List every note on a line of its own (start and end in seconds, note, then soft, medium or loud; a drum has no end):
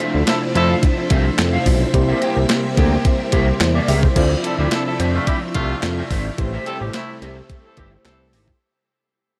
0.00 4.12 C3 medium
0.00 1.92 F3 medium
0.00 1.90 A3 medium
0.00 1.90 D4 medium
0.00 1.92 D4 medium
0.00 1.90 E4 medium
0.00 0.15 F4 medium
0.00 1.90 F4 medium
0.00 0.14 C5 medium
0.00 1.90 C5 medium
0.00 4.12 E5 medium
0.00 0.13 E5 medium
0.00 closed hi-hat medium
0.14 0.24 D2 loud
0.14 muted clean electric guitar stroke medium
0.27 0.40 F3 medium
0.27 0.40 E4 medium
0.27 0.40 A4 medium
0.27 muted clean electric guitar stroke medium
0.27 snare loud
0.27 clap loud
0.27 closed hi-hat medium
0.42 muted clean electric guitar stroke medium
0.55 0.75 F2 medium
0.55 0.73 F3 medium
0.55 0.73 E4 loud
0.55 0.69 F4 medium
0.55 0.73 A4 loud
0.55 0.69 C5 medium
0.55 0.69 E5 medium
0.55 closed hi-hat medium
0.70 0.82 F4 medium
0.70 0.82 C5 medium
0.70 0.83 F5 medium
0.83 muted clean electric guitar stroke soft
0.83 kick loud
0.83 closed hi-hat medium
0.97 muted clean electric guitar stroke medium
1.10 1.30 C2 loud
1.10 1.30 F4 medium
1.10 1.25 C5 loud
1.10 1.24 E5 loud
1.10 kick loud
1.10 closed hi-hat medium
1.25 muted clean electric guitar stroke soft
1.38 1.58 F2 medium
1.38 muted clean electric guitar stroke soft
1.38 snare loud
1.38 clap medium
1.38 closed hi-hat medium
1.53 1.65 F4 medium
1.53 1.65 C5 medium
1.53 1.67 F5 medium
1.66 1.86 B1 loud
1.66 muted clean electric guitar stroke soft
1.66 kick medium
1.66 open hi-hat medium
1.81 muted clean electric guitar stroke soft
1.93 2.14 C2 loud
1.93 4.14 G3 medium
1.93 4.12 A#3 medium
1.93 4.14 A#3 medium
1.93 4.12 C4 medium
1.93 3.57 E4 medium
1.93 3.58 G4 medium
1.93 3.58 C5 medium
1.93 muted clean electric guitar stroke soft
1.93 kick loud
1.93 closed hi-hat medium
2.09 2.20 G4 medium
2.09 2.21 A#4 medium
2.09 2.22 E5 medium
2.22 2.38 G4 medium
2.22 2.36 A#4 medium
2.22 2.36 G5 medium
2.22 closed hi-hat medium
2.36 2.46 C2 medium
2.36 muted clean electric guitar stroke medium
2.49 muted clean electric guitar stroke soft
2.49 snare loud
2.49 clap loud
2.49 closed hi-hat loud
2.64 muted clean electric guitar stroke soft
2.77 2.97 D2 medium
2.77 2.92 G4 medium
2.77 2.91 A#4 loud
2.77 2.91 G5 medium
2.77 kick medium
2.77 closed hi-hat medium
2.92 3.04 G4 medium
2.92 3.04 A#4 medium
2.92 3.05 G5 medium
3.05 muted clean electric guitar stroke soft
3.05 kick loud
3.05 closed hi-hat medium
3.20 muted clean electric guitar stroke medium
3.32 3.53 C2 medium
3.32 3.52 G4 medium
3.32 3.47 A#4 loud
3.32 3.46 E5 loud
3.32 kick loud
3.32 closed hi-hat medium
3.48 muted clean electric guitar stroke soft
3.60 3.80 E2 loud
3.60 3.75 E4 medium
3.60 3.75 C5 medium
3.60 muted clean electric guitar stroke soft
3.60 snare loud
3.60 clap medium
3.60 closed hi-hat medium
3.75 3.87 G4 medium
3.75 3.88 A#4 medium
3.75 3.88 D5 medium
3.75 3.88 E5 medium
3.88 4.08 C#2 loud
3.88 4.04 G4 medium
3.88 4.03 G4 medium
3.88 4.03 A#4 medium
3.88 4.02 E5 medium
3.88 open hi-hat medium
4.03 4.15 E4 medium
4.03 4.30 C5 medium
4.03 muted clean electric guitar stroke medium
4.03 kick medium
4.15 4.36 D2 loud
4.15 6.36 C3 medium
4.15 6.36 F3 medium
4.15 6.34 C4 medium
4.15 6.36 D4 medium
4.15 6.34 E4 medium
4.15 4.36 F4 medium
4.15 6.35 F4 medium
4.15 4.30 C5 medium
4.15 6.35 D5 medium
4.15 8.57 E5 medium
4.15 4.30 E5 medium
4.15 kick loud
4.15 closed hi-hat medium
4.15 crash medium
4.31 muted clean electric guitar stroke soft
4.44 4.56 F3 medium
4.44 4.56 E4 medium
4.44 4.56 A4 medium
4.44 muted clean electric guitar stroke soft
4.44 closed hi-hat medium
4.58 4.68 D2 loud
4.58 4.69 G3 medium
4.58 4.69 E4 medium
4.58 4.70 F4 medium
4.58 4.69 G4 medium
4.58 4.71 C5 medium
4.58 4.71 E5 medium
4.71 4.83 F3 medium
4.71 4.83 E4 medium
4.71 4.83 A4 medium
4.71 muted clean electric guitar stroke soft
4.71 snare loud
4.71 clap loud
4.71 closed hi-hat loud
4.86 4.97 F3 medium
4.86 4.97 E4 medium
4.86 4.97 A4 medium
4.86 muted clean electric guitar stroke soft
4.99 5.19 F2 medium
4.99 5.14 F4 medium
4.99 5.13 C5 loud
4.99 5.13 E5 medium
4.99 closed hi-hat medium
5.14 5.24 C3 medium
5.14 5.25 A3 loud
5.14 5.24 F4 loud
5.14 5.26 F4 soft
5.14 5.27 C5 medium
5.14 5.27 E5 medium
5.27 5.39 G3 medium
5.27 5.39 E4 medium
5.27 5.47 F4 medium
5.27 5.39 G4 loud
5.27 5.42 C5 medium
5.27 5.41 E5 loud
5.27 kick loud
5.27 closed hi-hat medium
5.42 muted clean electric guitar stroke medium
5.54 5.75 C2 loud
5.54 5.77 C3 loud
5.54 5.77 A3 loud
5.54 5.77 F4 loud
5.54 muted clean electric guitar stroke soft
5.54 kick loud
5.54 closed hi-hat medium
5.70 5.82 F4 medium
5.70 5.82 C5 medium
5.70 5.83 F5 medium
5.83 6.03 F2 medium
5.83 muted clean electric guitar stroke soft
5.83 snare loud
5.83 clap medium
5.83 closed hi-hat medium
5.97 6.09 F4 medium
5.97 6.10 C5 medium
5.97 6.10 E5 medium
6.10 6.30 G#1 loud
6.10 6.26 F4 medium
6.10 6.25 C5 medium
6.10 6.24 E5 medium
6.10 kick medium
6.10 open hi-hat medium
6.25 muted clean electric guitar stroke medium
6.38 6.58 A1 loud
6.38 8.58 C3 medium
6.38 8.58 G3 medium
6.38 8.56 A3 medium
6.38 8.58 A3 medium
6.38 8.56 E4 medium
6.38 8.57 G4 medium
6.38 8.57 C5 medium
6.38 muted clean electric guitar stroke soft
6.38 kick loud
6.38 closed hi-hat medium
6.53 6.65 G4 medium
6.53 6.65 C5 medium
6.53 6.67 E5 medium
6.66 6.78 E3 medium
6.66 6.78 C4 medium
6.66 6.82 G4 medium
6.66 6.78 A4 loud
6.66 6.80 C5 medium
6.66 6.80 G5 medium
6.66 closed hi-hat medium
6.81 6.90 A1 medium
6.81 6.91 E3 medium
6.81 6.91 C4 medium
6.81 6.91 G4 medium
6.81 muted clean electric guitar stroke soft
6.93 7.16 C3 loud
6.93 7.16 A3 loud
6.93 7.16 E4 loud
6.93 snare loud
6.93 clap medium
6.93 closed hi-hat loud
7.08 muted clean electric guitar stroke soft
7.22 7.42 C2 medium
7.22 7.41 G4 medium
7.22 7.36 C5 medium
7.22 7.35 E5 medium
7.22 closed hi-hat medium
7.36 muted clean electric guitar stroke medium
7.50 muted clean electric guitar stroke soft
7.50 kick loud
7.50 closed hi-hat medium
7.64 7.75 E3 medium
7.64 7.75 C4 medium
7.64 7.75 A4 medium
7.64 muted clean electric guitar stroke soft
7.77 7.97 G1 loud
7.77 7.89 E3 medium
7.77 7.89 C4 medium
7.77 7.97 G4 medium
7.77 7.89 G4 medium
7.77 7.92 C5 medium
7.77 7.91 E5 medium
7.77 kick medium
7.77 closed hi-hat medium
7.92 muted clean electric guitar stroke soft
8.05 8.35 C2 medium
8.05 8.28 E3 medium
8.05 8.28 C4 medium
8.05 8.28 A4 loud
8.05 muted clean electric guitar stroke soft
8.05 snare loud
8.05 clap medium
8.05 closed hi-hat medium
8.20 muted clean electric guitar stroke soft
8.33 8.53 G#1 loud
8.33 8.53 G4 medium
8.33 8.47 C5 medium
8.33 8.46 E5 medium
8.33 open hi-hat medium
8.48 muted clean electric guitar stroke soft
8.48 kick medium